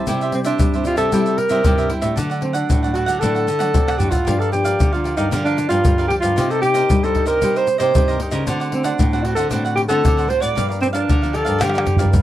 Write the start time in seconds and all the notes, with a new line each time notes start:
0.07 C3 G3 C4 E4 G4 C5 E5, pandeiro, shaker, surdo
0.21 G4 C5 E5, pandeiro, shaker
0.32 G3 C4 E4, muted cavaquinho stroke, pandeiro
0.45 D4 G4 C5 E5, pandeiro, shaker
0.59 G2 G3, pandeiro, shaker, surdo
0.74 G3 C4 E4 G4 C5 E5, pandeiro, shaker
0.85 E4 F4 G4 C5 E5, pandeiro, shaker
0.97 C3 G4 A4 C5 E5, pandeiro, shaker
1.12 C3 G3 C4 E4 G4 C5 E5, pandeiro, shaker, surdo
1.26 G4 C5 E5, pandeiro, shaker
1.38 A#4, muted cavaquinho stroke, pandeiro
1.49 C3 G3 C4 E4 G4 C5 E5, pandeiro, shaker
1.64 G2 C3 G3 C4 E4, pandeiro, shaker, surdo
1.78 G4 C5 E5, pandeiro, shaker
1.89 G3 C4 E4 G4 C5 E5, pandeiro
2.01 A2 G4 C5 E5, pandeiro, shaker
2.16 D3 F#3 A3 D4 A4 D5 F#5, pandeiro, shaker, surdo
2.30 A4 D5 F#5, pandeiro, shaker
2.41 F#3 A3 C4 D4, muted cavaquinho stroke, pandeiro
2.53 D4 A4 D5 F#5, pandeiro, shaker
2.70 A2, pandeiro, shaker, surdo
2.83 F#3 A3 D4 A4 D5 F#5, pandeiro, shaker
2.94 D4 F#4 A4 D5 F#5, pandeiro
3.06 D3 A4 D5 F#5, pandeiro, shaker
3.20 A2 D3 F#3 A3 D4 A4 D5 F#5, pandeiro, shaker, surdo
3.35 A4 D5 F#5, pandeiro, shaker
3.47 D3, muted cavaquinho stroke, pandeiro, shaker
3.59 F#3 A3 D4 A4 D5 F#5, pandeiro, shaker
3.74 A2 C3 F#3 A3 D4, pandeiro, shaker, surdo
3.88 A4 D5 F#5, pandeiro, tamborim, shaker
3.98 A2 F#3 A3 D4 G4 A4 D5 F#5, surdo, pandeiro, shaker
4.11 F4 A4 D5 F#5, pandeiro, shaker, surdo
4.25 G2 F3 A#3 D4 G4 A#4 D5 F5, pandeiro, shaker, surdo
4.39 A4 A#4 D5 F5, pandeiro, shaker
4.52 F3 A#3 D4 G4, muted cavaquinho stroke, pandeiro, shaker
4.65 A#4 D5 F5, pandeiro, shaker
4.80 D3, pandeiro, shaker, surdo
4.93 F3 A#3 D4 F4 A#4 D5 F5, pandeiro, shaker
5.04 G4 A#4 D5 F5, pandeiro
5.17 G2 D#4 A#4 D5 F5, pandeiro, shaker
5.31 G2 D3 F3 A#3 D4 G4 A#4 D5 F5, pandeiro, shaker, surdo
5.44 D4 A#4 D5 F5, pandeiro, shaker
5.58 muted cavaquinho stroke, pandeiro, shaker
5.69 G2 F3 A#3 D4 F4 A#4 D5 F5, pandeiro, shaker
5.85 G2 D3, pandeiro, shaker, surdo
5.98 A#4 D5 F5, pandeiro, shaker
6.08 F3 A#3 D4 G4 A#4 D5, pandeiro
6.12 F5
6.20 G2 F4 D5 F5, pandeiro, shaker
6.25 A#4
6.36 C3 A#3 D#4 G4 A#4 C5 D#5, pandeiro, shaker, surdo
6.50 A4 A#4 C5 D#5, pandeiro, shaker
6.62 A#3 D#4 G4, muted cavaquinho stroke, pandeiro
6.74 A#4 C5 D#5, pandeiro, shaker
6.90 G2 G3, pandeiro, shaker, surdo
7.03 A#3 D#4 G4 A4 A#4 C5 D#5, pandeiro, shaker
7.15 D#4 A#4 C5 D#5, pandeiro, surdo
7.26 C3 A#4 C5 D#5, pandeiro, shaker
7.41 C3 G3 A#3 D#4 G4 A#4 C5 D#5, pandeiro, shaker, surdo
7.56 A#4 C5 D#5, pandeiro, shaker
7.67 muted cavaquinho stroke, pandeiro, shaker
7.78 C3 A#3 D#4 G4 A#4 C5 D#5, pandeiro, shaker
7.94 G2 C3 A#3 D#4 G4, pandeiro, shaker, surdo
8.08 A#4 C5 D#5, pandeiro, shaker
8.20 A#3 D#4 G4 A#4 C5 D#5, pandeiro
8.31 C#3 A#4 C5 D#5, pandeiro, shaker
8.47 D3 A3 C4 D4 F#4 C5 D5 F#5, pandeiro, shaker, surdo
8.60 C5 D5 F#5, pandeiro, shaker
8.72 A3 C4 F#4, muted cavaquinho stroke, pandeiro
8.84 D4 C5 D5 F#5, pandeiro, shaker
8.99 A2, pandeiro, shaker, surdo
9.13 A3 C4 F#4 C5 D5 F#5, pandeiro, shaker
9.24 D4 F#4 C5 D5 F#5, pandeiro
9.35 D3 A4 C5 D5 F#5, pandeiro, shaker
9.51 A2 D3 A3 C4 D4 F#4 C5 D5 F#5, pandeiro, shaker, surdo
9.65 C5 D5 F#5, pandeiro, shaker
9.76 G4, muted cavaquinho stroke, pandeiro
9.89 D3 A3 C4 F#4 A4 C5 D5 F#5, pandeiro, shaker
10.04 A2 D3, pandeiro, shaker, surdo
10.17 C5 D5 F#5, pandeiro, shaker
10.28 A3 C4 D4 F#4 C5 D5 F#5, pandeiro
10.40 A2 C5 D5 F#5, pandeiro, shaker
10.55 G2 F3 A#3 D4 G4 A#4 D5 F5, pandeiro, shaker, surdo
10.69 A#4 D5 F5, pandeiro, shaker
10.80 F3 A#3 C4 D4, muted cavaquinho stroke, pandeiro, shaker
10.93 D4 A#4 D5 F5, pandeiro, shaker
11.09 D3, pandeiro, shaker, surdo
11.22 F3 A#3 D4 A#4 D5 F5, pandeiro, shaker
11.33 G4 A4 A#4 D5 F5, pandeiro
11.45 G2 A#4 D5 F5, pandeiro, shaker
11.58 D3 G4 A#4 D5 F5, pandeiro, tamborim, shaker, surdo
11.63 G2 F3 A#3 D4
11.70 tamborim
11.74 A#4 D5 F5, pandeiro, shaker
11.78 tamborim
11.86 muted cavaquinho stroke, surdo, pandeiro
11.96 G2 F3 A#3 D5 F5, surdo, pandeiro, shaker
12.01 D4 A#4
12.05 surdo
12.13 G2 D3, surdo, pandeiro, shaker